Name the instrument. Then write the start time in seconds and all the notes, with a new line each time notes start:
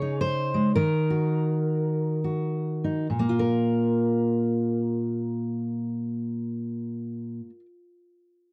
steel-string acoustic guitar
Already playing: C#3 G#4 C#5
0.02 D#4
0.21 C5
0.54 G#3
0.75 D#3 A#4
1.10 F#4
2.24 F#4
2.84 D#4
3.10 A#2
3.19 A#3
3.29 F4
3.39 A#4